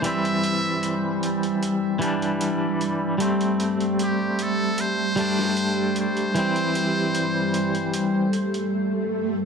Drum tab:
HH |xxx-x-xxx-xxx-x-|xxxxx-x-x-x-x-xx|xxx-x-xxx-xx----|
SD |----------------|-----------o----|----------------|